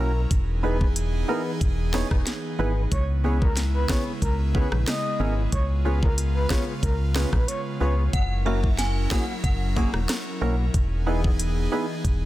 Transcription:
Already playing: analog synth pad F#3 C#4 E4 A#4, synth stab A#3, nylon-string guitar C#4
0.00 fm bass B1, synth stab C#4 E4 F#4 A#4, nylon-string guitar E4 A#4 C#5
0.31 fm bass E1, analog synth pad E3 B3 D#4 G#4, kick, closed hi-hat
0.63 nylon-string guitar B3 D#4 G#4 B4, synth stab B3 D#4 E4 G#4 B4
0.81 kick
0.96 closed hi-hat
1.28 nylon-string guitar B3 D#4 G#4 B4, synth stab B3 D#4 E4 G#4 A#4
1.61 fm bass E1, kick, closed hi-hat
1.93 nylon-string guitar B3 D#4 G#4 B4, synth stab B3 D#4 E4 G#4 C#5, cross-stick, snare
2.11 fm bass E1, kick, cross-stick
2.27 snare, closed hi-hat
2.58 fm bass G#1, nylon-string guitar B3 D#4 G#4 B4, synth stab B3 D#4 E4 G#4 B4
2.92 fm bass C#2, analog synth pad C#3 G#3 E4, soft synth lead C#5, kick, closed hi-hat
3.24 nylon-string guitar B3 E4 G#4 C#5, synth stab B3 C#4 E4 G#4 B4
3.41 soft synth lead A#4, kick
3.57 snare, closed hi-hat
3.74 soft synth lead B4
3.89 nylon-string guitar B3 E4 G#4 C#5, synth stab B3 C#4 E4 G#4 B4, soft synth lead C#5, kick, cross-stick, snare
4.22 fm bass C#2, soft synth lead A#4, kick, closed hi-hat
4.54 nylon-string guitar B3 E4 G#4 C#5, synth stab B3 C#4 E4 G#4 B4, soft synth lead B4, kick
4.72 fm bass A#1, cross-stick
4.87 soft synth lead D#5, cross-stick, snare, closed hi-hat
5.19 fm bass G#1, nylon-string guitar B3 E4 G#4 C#5, synth stab B3 C#4 E4 G#4 A#4
5.52 fm bass C#2, analog synth pad C#3 F4, soft synth lead C#5, kick, closed hi-hat
5.85 nylon-string guitar B3 F4 G#4 C#5, synth stab B3 C#4 F4 G#4 B4
6.02 soft synth lead A#4, kick
6.18 closed hi-hat
6.35 soft synth lead B4
6.50 nylon-string guitar B3 F4 G#4 C#5, synth stab B3 C#4 F4 G#4 B4, soft synth lead C#5, kick, cross-stick, snare
6.83 fm bass C#2, soft synth lead A#4, kick, closed hi-hat
7.15 nylon-string guitar B3 F4 G#4 C#5, synth stab B3 C#4 F4 G#4 B4, cross-stick, snare
7.33 fm bass A#1, soft synth lead B4, kick, cross-stick
7.48 soft synth lead C#5, closed hi-hat
7.80 fm bass C#2, nylon-string guitar B3 F4 G#4 C#5, synth stab B3 C#4 F4 G#4 B4, soft synth lead C#5
8.13 fm bass F#1, analog synth pad F#3 C#4 E4 A#4, synth bell F#5, kick, closed hi-hat
8.45 nylon-string guitar A#3 E4 F#4 C#5, synth stab A#3 C#4 E4 F#4 A#4, synth bell E5
8.64 kick
8.78 synth bell G#5, snare, closed hi-hat
9.11 nylon-string guitar A#3 E4 F#4 C#5, synth stab A#3 C#4 E4 F#4 G#4, synth bell F#5, kick, cross-stick, snare
9.44 fm bass F#1, synth bell F#5, kick, closed hi-hat
9.76 nylon-string guitar A#3 E4 F#4 C#5, synth stab A#3 C#4 E4 F#4 G#4, kick
9.94 fm bass E1, cross-stick
10.09 cross-stick, snare, closed hi-hat
10.41 fm bass B1, nylon-string guitar A#3 E4 F#4 C#5, synth stab A#3 C#4 E4 F#4 A#4
10.74 fm bass E1, analog synth pad E3 B3 D#4 G#4, kick, closed hi-hat
11.06 nylon-string guitar B3 E4 G#4 D#5, synth stab B3 D#4 E4 G#4 B4
11.24 kick
11.40 closed hi-hat
11.72 nylon-string guitar B3 E4 G#4 D#5, synth stab B3 D#4 E4 G#4 B4
12.05 fm bass E1, kick, closed hi-hat

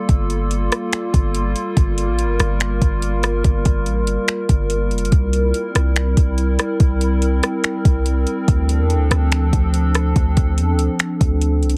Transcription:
Already playing: ambient pad G3 A#3 F4 A4
0.09 808-style bass G1, kick, closed hi-hat
0.30 closed hi-hat
0.51 closed hi-hat
0.72 cross-stick, closed hi-hat
0.93 finger snap, closed hi-hat
1.14 808-style bass G1, kick, closed hi-hat
1.35 closed hi-hat
1.56 closed hi-hat
1.77 808-style bass G1, ambient pad A#4, kick, closed hi-hat
1.98 closed hi-hat
2.08 808-style bass A1
2.19 closed hi-hat
2.24 808-style bass G1
2.40 808-style bass G1, cross-stick, closed hi-hat
2.60 finger snap, closed hi-hat
2.81 808-style bass G1, kick, closed hi-hat
3.02 closed hi-hat
3.23 cross-stick, closed hi-hat
3.44 808-style bass G1, kick, closed hi-hat
3.65 808-style bass G1, kick, closed hi-hat
3.86 808-style bass A1, closed hi-hat
4.02 808-style bass G1
4.07 closed hi-hat
4.28 finger snap, closed hi-hat
4.49 808-style bass G1, kick, closed hi-hat
4.70 closed hi-hat
4.91 808-style bass F1, closed hi-hat
4.98 808-style bass G1, closed hi-hat
5.05 closed hi-hat
5.12 808-style bass C2, ambient pad C4 E4, kick, closed hi-hat
5.33 closed hi-hat
5.54 closed hi-hat
5.75 808-style bass C2, cross-stick, closed hi-hat
5.96 finger snap, closed hi-hat
6.17 808-style bass C2, kick, closed hi-hat
6.38 closed hi-hat
6.59 cross-stick, closed hi-hat
6.80 808-style bass C2, kick, closed hi-hat
7.01 closed hi-hat
7.22 closed hi-hat
7.43 cross-stick, closed hi-hat
7.64 finger snap, closed hi-hat
7.85 808-style bass C2, kick, closed hi-hat
8.06 closed hi-hat
8.27 closed hi-hat
8.47 808-style bass D2, ambient pad F3 D4 A4, kick, closed hi-hat
8.69 closed hi-hat
8.79 808-style bass E2
8.90 closed hi-hat
8.95 808-style bass D2
9.11 808-style bass D2, cross-stick, closed hi-hat
9.32 finger snap, closed hi-hat
9.53 808-style bass D2, kick, closed hi-hat
9.74 closed hi-hat
9.95 cross-stick, closed hi-hat
10.16 808-style bass D2, kick, closed hi-hat
10.37 808-style bass D2, kick, closed hi-hat
10.58 808-style bass E2, closed hi-hat
10.74 808-style bass D2
10.79 closed hi-hat
10.99 finger snap, closed hi-hat
11.21 808-style bass D2, kick, closed hi-hat
11.41 closed hi-hat
11.63 808-style bass C2, closed hi-hat
11.70 808-style bass D2, closed hi-hat

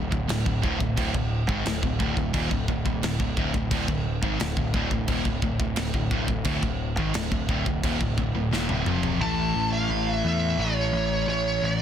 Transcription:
Already playing: picked electric bass D1, distorted electric guitar A2
0.11 picked electric bass D1, overdriven electric guitar D2 A2, kick
0.28 picked electric bass D1, overdriven electric guitar D2 A2, snare, crash
0.45 picked electric bass D1, overdriven electric guitar D2 A2, kick
0.62 picked electric bass D1, overdriven electric guitar D2 A2, kick
0.79 picked electric bass D1, overdriven electric guitar D2 A2, kick
0.96 picked electric bass D1, overdriven electric guitar D2 A2, kick, crash
1.14 picked electric bass D1, overdriven electric guitar D2 A2, kick
1.48 picked electric bass G#1, overdriven electric guitar G#2 D#3, kick
1.65 picked electric bass D1, overdriven electric guitar D2 A2, snare, crash
1.82 picked electric bass D1, overdriven electric guitar D2 A2, kick
2.00 picked electric bass D1, overdriven electric guitar D2 A2, kick
2.17 picked electric bass D1, overdriven electric guitar D2 A2, kick
2.34 picked electric bass D#1, overdriven electric guitar D#2 A#2, kick, crash
2.51 picked electric bass D1, overdriven electric guitar D2 A2, kick
2.68 picked electric bass D1, overdriven electric guitar D2 A2, kick
2.85 picked electric bass D1, overdriven electric guitar D2 A2, kick
3.03 picked electric bass D1, overdriven electric guitar D2 A2, snare, crash
3.20 picked electric bass D1, overdriven electric guitar D2 A2, kick
3.37 picked electric bass D1, overdriven electric guitar D2 A2, kick
3.54 picked electric bass D1, overdriven electric guitar D2 A2, kick
3.71 picked electric bass D1, overdriven electric guitar D2 A2, kick, crash
3.88 picked electric bass D1, overdriven electric guitar D2 A2, kick
4.22 picked electric bass G#1, overdriven electric guitar G#2 D#3, kick
4.39 picked electric bass D1, overdriven electric guitar D2 A2, snare, crash
4.56 picked electric bass D1, overdriven electric guitar D2 A2, kick
4.73 picked electric bass D1, overdriven electric guitar D2 A2, kick
4.91 picked electric bass D1, overdriven electric guitar D2 A2, kick
5.07 picked electric bass D#1, overdriven electric guitar D#2 A#2, kick, crash
5.25 picked electric bass D1, overdriven electric guitar D2 A2, kick
5.42 picked electric bass D1, overdriven electric guitar D2 A2, kick
5.59 picked electric bass D1, overdriven electric guitar D2 A2, kick
5.76 picked electric bass D1, overdriven electric guitar D2 A2, snare, crash
5.94 picked electric bass D1, overdriven electric guitar D2 A2, kick
6.11 picked electric bass D1, overdriven electric guitar D2 A2, kick
6.28 picked electric bass D1, overdriven electric guitar D2 A2, kick
6.44 picked electric bass D1, overdriven electric guitar D2 A2, kick, crash
6.63 picked electric bass D1, overdriven electric guitar D2 A2, kick
6.97 picked electric bass G#1, overdriven electric guitar G#2 D#3, kick
7.14 picked electric bass D1, overdriven electric guitar D2 A2, snare, crash
7.32 picked electric bass D1, overdriven electric guitar D2 A2, kick
7.48 picked electric bass D1, overdriven electric guitar D2 A2, kick
7.66 picked electric bass D1, overdriven electric guitar D2 A2, kick
7.84 picked electric bass D#1, overdriven electric guitar D#2 A#2, kick, crash
8.01 picked electric bass D1, overdriven electric guitar D2 A2, kick
8.18 picked electric bass D1, overdriven electric guitar D2 A2, kick
8.33 picked electric bass D1, overdriven electric guitar D2 A2
8.51 picked electric bass D#1, overdriven electric guitar D#2 A#2, snare
8.69 picked electric bass D1, overdriven electric guitar D2 A2, high tom
8.86 picked electric bass F1, overdriven electric guitar F2 C3 F3, mid tom
9.03 floor tom
9.19 picked electric bass A1, overdriven electric guitar A2 E3 A3, lead electric guitar A5
9.55 picked electric bass A1
9.73 lead electric guitar F5
9.89 picked electric bass A1
10.12 lead electric guitar E5
10.25 picked electric bass E2, lead electric guitar E5
10.56 picked electric bass A1, overdriven electric guitar A2 E3 A3
10.61 lead electric guitar C#5
10.92 picked electric bass A1
11.27 picked electric bass A1, lead electric guitar C#5
11.62 picked electric bass A1, lead electric guitar C#5
11.75 lead electric guitar D5

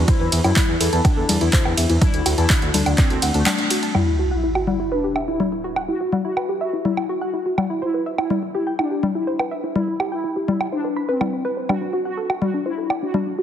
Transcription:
0.08 analog polysynth E4, synth pluck C5, kick, closed hi-hat, ride
0.20 detuned saw bass E2, synth pluck B4
0.32 detuned saw bass E2, synth pluck E5, open hi-hat, ride
0.44 detuned saw bass F#2, synth pluck E4, analog polysynth E4, closed hi-hat, low woodblock
0.56 synth pluck E4, kick, clap, closed hi-hat, ride, low conga
0.68 detuned saw bass E2, synth pluck E4
0.80 detuned saw bass E2, analog polysynth E4, synth pluck A4, open hi-hat, ride
0.93 detuned saw bass E2, synth pluck A5, closed hi-hat
1.05 analog polysynth D4, synth pluck E4, kick, closed hi-hat, ride, low woodblock
1.17 detuned saw bass E2, synth pluck A4
1.29 detuned saw bass E2, synth pluck A5, open hi-hat, ride, low conga
1.41 detuned saw bass E2, synth pluck E4, analog polysynth E4, closed hi-hat
1.53 synth pluck C5, kick, clap, closed hi-hat, ride
1.65 detuned saw bass E2, synth pluck B4, low woodblock
1.77 detuned saw bass E2, synth pluck E5, open hi-hat, ride
1.90 detuned saw bass E2, synth pluck E4, closed hi-hat
2.01 synth pluck D4, analog polysynth E4, kick, closed hi-hat, ride, low conga
2.14 detuned saw bass D2, synth pluck D4, closed hi-hat
2.26 detuned saw bass D2, synth pluck F#4, open hi-hat, ride, low woodblock
2.38 detuned saw bass E2, analog polysynth E4, synth pluck A5, closed hi-hat
2.50 synth pluck D4, kick, clap, closed hi-hat, ride
2.62 detuned saw bass D2, synth pluck F#4, closed hi-hat
2.74 detuned saw bass D2, analog polysynth D4, synth pluck A5, open hi-hat, ride, low conga
2.86 detuned saw bass D2, synth pluck D4, closed hi-hat, low woodblock
2.98 analog polysynth C4, synth pluck D5, kick, clap, closed hi-hat, ride
3.10 detuned saw bass D2, synth pluck A4, closed hi-hat
3.22 detuned saw bass D2, synth pluck F#5, open hi-hat, ride
3.34 detuned saw bass D2, analog polysynth A3, synth pluck D4, closed hi-hat
3.46 synth pluck D4, clap, closed hi-hat, ride, low conga, low woodblock
3.58 synth pluck D4, closed hi-hat
3.70 synth pluck F#4, open hi-hat, ride
3.83 synth pluck A5, closed hi-hat
3.95 synth pluck E4, analog polysynth E4, sub drop, low conga, low woodblock
4.07 synth pluck E4
4.19 synth pluck F#4
4.31 analog polysynth E4, synth pluck F#5
4.43 synth pluck E4
4.55 synth pluck F#4, low woodblock
4.67 analog polysynth E4, synth pluck F#5, low conga
4.80 synth pluck E4
4.92 analog polysynth D4, synth pluck B4
5.04 synth pluck G4
5.16 synth pluck E5, low woodblock
5.28 synth pluck E4, analog polysynth E4
5.40 synth pluck E4, low conga
5.52 synth pluck E4
5.64 synth pluck F#4
5.76 synth pluck F#5, low woodblock
5.88 synth pluck E4, analog polysynth F#4
6.01 synth pluck F#4
6.13 synth pluck F#5, low conga
6.25 synth pluck E4, analog polysynth F#4
6.37 synth pluck B4, low woodblock
6.49 synth pluck G4
6.61 analog polysynth F#4, synth pluck E5
6.73 synth pluck E4
6.85 synth pluck E4, analog polysynth E4, low conga
6.97 synth pluck E4, low woodblock
7.09 synth pluck F#4
7.21 analog polysynth F#4, synth pluck F#5
7.33 synth pluck E4
7.46 synth pluck F#4
7.58 synth pluck F#5, low conga, low woodblock
7.70 synth pluck E4
7.82 analog polysynth E4, synth pluck C5
7.94 synth pluck B4
8.06 synth pluck E5
8.18 synth pluck E4, analog polysynth E4, low woodblock
8.30 synth pluck E4, low conga
8.43 synth pluck E4
8.55 analog polysynth E4, synth pluck G4
8.67 synth pluck G5
8.79 analog polysynth D4, synth pluck E4, low woodblock
8.91 synth pluck G4
9.03 synth pluck G5, low conga
9.15 synth pluck E4, analog polysynth E4
9.27 synth pluck C5
9.39 synth pluck B4, low woodblock
9.51 synth pluck E5
9.63 synth pluck E4
9.76 synth pluck E4, analog polysynth E4, low conga
9.88 synth pluck E4
10.00 synth pluck G4, low woodblock
10.12 analog polysynth E4, synth pluck G5
10.24 synth pluck E4
10.36 synth pluck G4
10.48 analog polysynth E4, synth pluck G5, low conga
10.60 synth pluck E4, low woodblock
10.72 analog polysynth D4, synth pluck C5
10.84 synth pluck B4
10.96 synth pluck B5
11.09 analog polysynth C4, synth pluck B4
11.21 synth pluck E4, low conga, low woodblock
11.33 synth pluck C5
11.45 synth pluck B4
11.57 synth pluck C5
11.69 synth pluck D4, analog polysynth F#4, low conga, low woodblock
11.81 synth pluck D4
11.93 synth pluck F#4
12.05 analog polysynth F#4, synth pluck F#5
12.17 synth pluck A4
12.30 synth pluck F#4, low woodblock
12.42 analog polysynth F#4, synth pluck F#5, low conga
12.54 synth pluck D4
12.66 analog polysynth E4, synth pluck C5
12.78 synth pluck A4
12.90 synth pluck D5, low woodblock
13.02 synth pluck D4, analog polysynth F#4
13.14 synth pluck D4, low conga
13.26 synth pluck D4
13.38 synth pluck F#4

